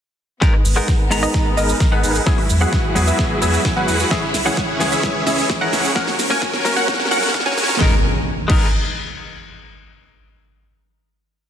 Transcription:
0.41 clean electric guitar G#3 B3 D#4 A#4, string section G#3 B3, supersaw synth D#4 G#4 A#4 B4 D#5, synth pluck D#5, kick, snare, riser, cabasa
0.53 cross-stick
0.65 sub bass G#1, open hi-hat, cabasa
0.76 clean electric guitar G#3 B3 D#4 A#4, supersaw synth D#4 G#4 A#4 B4 F#5, synth pluck F#5, cross-stick, cabasa
0.88 kick, snare, cabasa
1.11 sub bass G#1, clean electric guitar G#3 B3 D#4 A#5, open hi-hat, cabasa
1.23 supersaw synth D#4 G#4 A#4 B4 D#5, synth pluck D#5, cross-stick, cabasa
1.34 kick, snare, cabasa
1.57 sub bass G#1, clean electric guitar G#3 B3 D#4 A#4, supersaw synth D#4 G#4 A#4 B4 D#5, synth pluck D#5, open hi-hat, cabasa
1.69 cabasa
1.80 kick, snare, cabasa
1.91 clean electric guitar G#3 B3 D#4 B4, supersaw synth D#4 G#4 A#4 B4 F#5, synth pluck F#5
2.04 sub bass G#1, open hi-hat, cabasa
2.15 cabasa
2.26 clean electric guitar F#3 B3 E4 G#4, string section F#3 E4, supersaw synth E4 F#4 G#4 B4 E5, synth pluck E5, kick, snare, cabasa
2.38 cross-stick, open hi-hat
2.50 sub bass E2, open hi-hat, cabasa
2.61 clean electric guitar F#3 B3 E4 G#4, supersaw synth E4 F#4 G#4 B4 F#5, synth pluck F#5, cross-stick, cabasa
2.73 kick, snare, cabasa
2.95 sub bass E2, clean electric guitar F#3 B3 E4 G#4, open hi-hat, cabasa
3.07 supersaw synth E4 F#4 G#4 B4 E5, synth pluck E5, cabasa
3.19 kick, snare, cabasa
3.41 sub bass E2, clean electric guitar F#3 B3 E4 G#4, supersaw synth E4 F#4 G#4 B4 E5, synth pluck E5, open hi-hat, cabasa
3.54 cabasa
3.65 kick, snare, cabasa
3.76 clean electric guitar F#3 B3 E4 B4, supersaw synth E4 F#4 G#4 B4 F#5, synth pluck F#5
3.88 sub bass E2, open hi-hat, cabasa
4.00 cabasa
4.11 string section C#3 G#3, clean electric guitar E3 G#3 C#4 G#4, supersaw synth C#4 E4 G#4 C#5 E5, synth pluck E5, kick, snare, cabasa
4.34 sub bass C#2, snare, open hi-hat, cabasa
4.45 clean electric guitar E3 G#3 C#4 G#4, supersaw synth C#4 E4 G#4 C#5 F#5, synth pluck F#5, cabasa
4.57 kick, snare, cabasa
4.80 sub bass C#2, clean electric guitar E3 G#3 C#4 G#4, snare, open hi-hat, cabasa
4.92 supersaw synth C#4 E4 G#4 C#5 E5, synth pluck E5, cabasa
5.03 kick, snare, cabasa
5.26 sub bass C#2, clean electric guitar E3 G#3 C#4 G#4, supersaw synth C#4 E4 G#4 C#5 E5, synth pluck E5, snare, open hi-hat, cabasa
5.38 cabasa
5.50 kick, snare, cabasa
5.61 clean electric guitar E3 G#3 C#4 A#4, supersaw synth C#4 E4 G#4 C#5 F#5, synth pluck F#5
5.73 sub bass C#2, snare, open hi-hat, cabasa
5.85 cabasa
5.95 clean electric guitar F#3 A#3 C#4 A#4, string section F#3 C#4 A#4, supersaw synth C#4 F#4 A#4 C#5 F#5, synth pluck F#5, kick, snare, cabasa
6.07 snare, open hi-hat
6.19 sub bass F#1, snare, open hi-hat, cabasa
6.30 clean electric guitar F#3 A#3 C#4 A#4, supersaw synth C#4 F#4 A#4 C#5 G#5, synth pluck G#5, snare, cabasa
6.42 kick, snare, cabasa
6.54 snare
6.64 sub bass F#1, clean electric guitar F#3 A#3 C#4 A#4, snare, open hi-hat, cabasa
6.76 supersaw synth C#4 F#4 A#4 C#5 F#5, synth pluck F#5, snare, cabasa
6.88 kick, snare, cabasa
6.94 snare
7.00 snare
7.05 snare
7.11 sub bass F#1, clean electric guitar F#3 A#3 C#4 A#4, supersaw synth C#4 F#4 A#4 C#5 F#5, synth pluck F#5, snare, open hi-hat, cabasa
7.17 snare
7.23 snare, cabasa
7.28 snare
7.34 kick, snare, cabasa
7.40 snare
7.45 clean electric guitar F#3 A#3 C#4 C#5, supersaw synth C#4 F#4 A#4 C#5 G#5, synth pluck G#5, snare
7.52 snare
7.57 sub bass F#1, snare, open hi-hat, cabasa
7.63 snare
7.69 snare, cabasa
7.75 snare
7.79 sub bass G#1, clean electric guitar G#3 B3 D#4 A#4, string section B3 G#4 A#4, supersaw synth D#4 G#4 A#4 B4 D#5, synth pluck D#5, kick, snare, impact
8.48 sub bass G#1, clean electric guitar G#3 B3 D#4 A#4, supersaw synth D#4 G#4 A#4 B4 D#5, synth pluck D#5, kick, crash

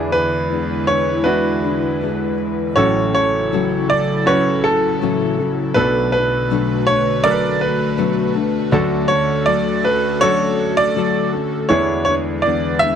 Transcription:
Already playing: grand piano E2 E3 D4 E4 G#4, analog synth pad D3 G#3 E4 B4, nylon-string guitar E3 B3 D4 G#4
0.12 grand piano B4
0.50 nylon-string guitar E3 B3 D4 G#4
0.87 nylon-string guitar B3 D4 G#4, grand piano C#5
1.24 nylon-string guitar E3 B3 D4 G#4, grand piano D4 E4 F#4 B4
1.63 nylon-string guitar B3 D4 G#4
2.01 nylon-string guitar E3 B3 D4 G#4
2.76 grand piano A1 A2 C#4 F#4 A4 C#5, nylon-string guitar A2 E3 F#3 A3 C#4 A4, analog synth pad C#3 F#3 E4 A4
3.14 nylon-string guitar F#3 A3 C#4 A4, grand piano C#5
3.52 nylon-string guitar A2 E3 F#3 A3 C#4 A4
3.89 nylon-string guitar F#3 A3 A4, grand piano D5
4.26 nylon-string guitar F#3 A3 C#4, grand piano C#4 F#4 B4 C#5
4.30 nylon-string guitar A4
4.64 grand piano A4
5.01 nylon-string guitar A2 E3 F#3 A3 C#4 A4
5.39 nylon-string guitar F#3 A3 C#4 A4
5.74 grand piano B1 B2 D4 A4 B4, nylon-string guitar B2 F#3 A3 D4 A4, analog synth pad D3 A3 F#4 B4
6.12 nylon-string guitar A3 D4 A4, grand piano B4
6.50 nylon-string guitar B2 F#3 A3 D4 A4
6.86 nylon-string guitar A3 D4 A4, grand piano C#5
7.24 nylon-string guitar F#3 A3 D4 A4, grand piano D4 A4 A#4 D5
7.31 grand piano B4
7.61 grand piano B4
7.97 nylon-string guitar B2 F#3 A3 D4 A4
8.34 nylon-string guitar A3 D4 A4
8.71 grand piano D2 D3 D4 F#4 A4, nylon-string guitar D3 F#3 A3 C#4 A4, analog synth pad D3 A4
9.08 nylon-string guitar C#4 A4, grand piano C#5
9.12 nylon-string guitar A3
9.46 nylon-string guitar D3 F#3 A3 A4, grand piano D5
9.83 nylon-string guitar A3 C#4 A4, grand piano B4
10.21 nylon-string guitar F#3 A3 C#4 A4, grand piano D4 F#4 A4 C#5
10.77 grand piano D5
10.96 nylon-string guitar D3 F#3 A3 A4
11.33 nylon-string guitar A3 C#4 A4
11.69 grand piano E2 E3 D4 E4 G#4 C#5, analog synth pad D3 G#3 E4 B4, nylon-string guitar E3 B3 D4 G#4
12.05 nylon-string guitar G#4, grand piano C#5
12.09 nylon-string guitar B3 D4
12.42 nylon-string guitar E3 B3, grand piano D5
12.47 nylon-string guitar D4 G#4
12.79 nylon-string guitar G#4, grand piano E5
12.84 nylon-string guitar B3 D4

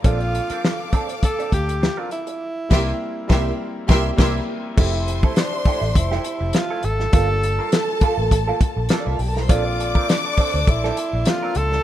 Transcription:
0.02 fingered electric bass A#1, grand piano F3 A#3 C4 D4 A4, clean electric guitar C4 D4 A4, tenor saxophone F4, violin section A4 F5 D6, kick, closed hi-hat
0.20 muted clean electric guitar stroke, closed hi-hat
0.35 muted clean electric guitar stroke, closed hi-hat
0.50 clean electric guitar C4 D4 A#4, muted fingered electric bass stroke, closed hi-hat
0.65 snare
0.80 muted clean electric guitar stroke
0.93 clean electric guitar C4 D4 A4, kick, closed hi-hat
1.09 muted clean electric guitar stroke, closed hi-hat
1.23 tenor saxophone A4, muted clean electric guitar stroke, kick, closed hi-hat
1.39 clean electric guitar C4 D4 A4, closed hi-hat
1.52 fingered electric bass D2, tenor saxophone G4, muted clean electric guitar stroke, kick, closed hi-hat
1.68 muted clean electric guitar stroke, closed hi-hat
1.82 muted clean electric guitar stroke, snare
1.97 clean electric guitar C4 D4 A#4, tenor saxophone F4
2.11 tenor saxophone E4, muted clean electric guitar stroke, closed hi-hat
2.27 muted clean electric guitar stroke, closed hi-hat
2.69 fingered electric bass C2, grand piano G3 A#3 C4 E4 A#4, clean electric guitar A#3 E4, violin section G4 E5 C6, kick, snare, crash
3.28 fingered electric bass C2, grand piano G3 A#3 C4 E4 A#4, clean electric guitar A#3 E4 G4, violin section G4 E5 C6, kick, snare
3.87 fingered electric bass C2, grand piano G3 A#3 C4 E4 A#4, clean electric guitar A#3 E4 G4, violin section G4 E5 C6, kick, snare
4.16 fingered electric bass C2, grand piano G3 A#3 C4 E4 A#4, clean electric guitar A#3 E4 G4, violin section G4 E5 C6, kick, snare, crash
4.75 fingered electric bass F1, grand piano F3 A3 C4 E4 G4, clean electric guitar A3 E4, string section G4 E5 A5, violin section C5 C6, kick, crash
4.80 tenor saxophone E4, clean electric guitar G4
4.94 muted clean electric guitar stroke
5.08 muted clean electric guitar stroke, closed hi-hat
5.23 clean electric guitar A3 E4 A4, kick
5.36 tenor saxophone D4, muted clean electric guitar stroke, snare, closed hi-hat
5.53 muted clean electric guitar stroke
5.65 clean electric guitar A3 E4 G4, muted fingered electric bass stroke, kick, open hi-hat
5.81 fingered electric bass A1, muted clean electric guitar stroke
5.95 fingered electric bass F1, tenor saxophone E4, muted clean electric guitar stroke, kick, closed hi-hat
6.11 clean electric guitar A3 E4 G4, snare
6.24 closed hi-hat
6.40 fingered electric bass F1, muted clean electric guitar stroke
6.53 tenor saxophone F4, muted clean electric guitar stroke, snare, closed hi-hat
6.70 clean electric guitar A3 E4 A4
6.83 fingered electric bass G#1, tenor saxophone A4, muted clean electric guitar stroke, closed hi-hat
7.00 muted clean electric guitar stroke, snare
7.12 fingered electric bass G1, grand piano G3 A#3 D4 F4 A4, string section A#3 F4, clean electric guitar A#3 F4 A4, violin section A4 A5, kick, closed hi-hat
7.29 muted clean electric guitar stroke
7.43 muted clean electric guitar stroke, closed hi-hat
7.59 clean electric guitar A#3 F4 A#4
7.72 snare, closed hi-hat
7.89 muted clean electric guitar stroke
8.01 clean electric guitar A#3 F4 A4, muted fingered electric bass stroke, kick, closed hi-hat
8.18 fingered electric bass A1, muted clean electric guitar stroke
8.31 muted clean electric guitar stroke, kick, closed hi-hat
8.48 clean electric guitar A#3 F4 A4
8.61 muted fingered electric bass stroke, muted clean electric guitar stroke, kick, closed hi-hat
8.76 fingered electric bass A#1, muted clean electric guitar stroke
8.89 clean electric guitar A#3 F4 A4, snare, closed hi-hat
8.98 violin section D4 D5
9.06 fingered electric bass C2, violin section E4 E5
9.13 violin section F4 F5
9.19 fingered electric bass B1, violin section G4 G5, muted clean electric guitar stroke, open hi-hat
9.27 violin section A4 A5
9.34 violin section A#4 A#5, muted clean electric guitar stroke, snare
9.41 violin section C5 C6
9.47 fingered electric bass A#1, grand piano F3 A#3 C4 D4 A4, clean electric guitar C4 D4 A4, tenor saxophone F4, string section A4 D5 C6, violin section D5 D6, kick, closed hi-hat
9.65 muted clean electric guitar stroke
9.79 muted clean electric guitar stroke, closed hi-hat
9.95 clean electric guitar C4 D4 A#4, kick
10.09 tenor saxophone D4, snare, closed hi-hat
10.24 muted clean electric guitar stroke
10.38 clean electric guitar C4 D4 A4, muted fingered electric bass stroke, kick, open hi-hat
10.54 fingered electric bass D2, muted clean electric guitar stroke
10.67 fingered electric bass A#1, tenor saxophone E4, muted clean electric guitar stroke, kick, closed hi-hat
10.84 clean electric guitar C4 D4 A4, snare
10.97 muted clean electric guitar stroke, closed hi-hat
11.13 fingered electric bass A#1, muted clean electric guitar stroke
11.25 grand piano F3 A#3 C4 D4 A4, tenor saxophone F4, muted clean electric guitar stroke, snare, closed hi-hat
11.43 clean electric guitar C4 D4 A#4
11.55 fingered electric bass C#2, tenor saxophone A4, muted clean electric guitar stroke, closed hi-hat
11.72 muted clean electric guitar stroke, snare

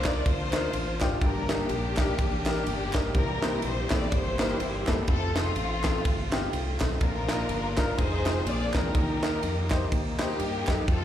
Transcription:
Already playing: fingered electric bass C2, tonewheel organ A#3 D4 F4, string section D4 F4
0.04 upright piano D4 F4 A#4, string section D5, kick, snare, clap, ride
0.25 fingered electric bass D2, string section F4 C5, kick, ride
0.53 upright piano D4 F4 A#4, snare, clap, ride
0.73 fingered electric bass A1, ride
1.01 fingered electric bass G#1, upright piano D4 F4 G4, kick, snare, clap, ride
1.21 fingered electric bass G1, upright piano G2, tonewheel organ A3 D4 G4, string section D4 G4 A#4, kick, ride
1.27 tonewheel organ A#3
1.49 string section A#3 D4 G4, upright piano D4 G4 A#4, snare, clap, ride
1.69 fingered electric bass A#1, ride
1.97 upright piano D4 G4 A#4, kick, snare, clap, ride
2.19 fingered electric bass A1, kick, ride
2.46 string section A#3 D4 G4, upright piano D4 G4 A#4, snare, clap, ride
2.67 fingered electric bass G1, ride
2.93 upright piano D4 G4 A#4, kick, snare, clap, ride
3.14 fingered electric bass C2, upright piano C3, tonewheel organ E3 G3 A#3 C4 G4, string section E4 G4 A#4, kick, ride
3.42 upright piano A#3 C4 E4 G4 C5, snare, clap, ride
3.62 fingered electric bass A#1, string section C5, ride
3.90 fingered electric bass A1, upright piano A#3 C4 E4 G4 A4, string section D5, kick, snare, clap, ride
4.12 fingered electric bass G1, string section E4 G4 C5, kick, ride
4.39 upright piano A#3 C4 E4 G4 A#4, snare, clap, ride
4.60 fingered electric bass G1, ride
4.87 fingered electric bass F#1, upright piano A#3 C4 E4 G4 A4, kick, snare, clap, ride
5.08 fingered electric bass F1, tonewheel organ A3 C4 F4, string section C4 F4 A4, kick, ride
5.36 string section A3 C4 F4, upright piano C4 F4 A4, snare, clap, ride
5.56 fingered electric bass A1, ride
5.83 upright piano C4 F4 A4, kick, snare, clap, ride
6.05 fingered electric bass G1, kick, ride
6.32 upright piano C4 F4 G4, snare, clap, ride
6.53 fingered electric bass C2, upright piano A3 F4, ride
6.80 fingered electric bass B1, upright piano C4 A4, kick, snare, clap, ride
7.01 fingered electric bass A#1, upright piano A#2, tonewheel organ A#3 D4 F4, string section D4 F4 A#4, kick, ride
7.29 upright piano D4 F4 A#4, snare, clap, ride
7.49 fingered electric bass G1, ride
7.77 upright piano D4 F4 A#4, kick, snare, clap, ride
7.97 fingered electric bass F1, tonewheel organ F3 G#3 C4 D#4 G#4, string section D#4 G#4 C5, kick, ride
8.26 upright piano G#3 C4 D#4 F4 C5, snare, clap, ride
8.46 fingered electric bass A#1, upright piano A#2, tonewheel organ F3 A#3 C4 D4 G#4, string section F4 G#4 D5, ride
8.74 fingered electric bass E2, upright piano G#3 C4 D4 F4 A#4, string section D#4 G4 A#4, kick, snare, clap, ride
8.94 fingered electric bass D#2, upright piano D#3, tonewheel organ A#3 D#4 F#4, kick, ride
9.01 tonewheel organ G4
9.22 upright piano D#4 G4 A#4, snare, clap, ride
9.43 fingered electric bass F2, ride
9.70 upright piano D#4 G4 C5, kick, snare, clap, ride
9.92 fingered electric bass D#2, kick, ride
10.18 string section A#3 D#4 G4, upright piano D#4 G4 C5, snare, clap, ride
10.40 fingered electric bass G2, ride
10.67 fingered electric bass F#2, upright piano D#4 G4 A4, kick, snare, clap, ride
10.88 fingered electric bass F2, tonewheel organ A3 C4 F4, string section C4 F4 A4, kick, ride

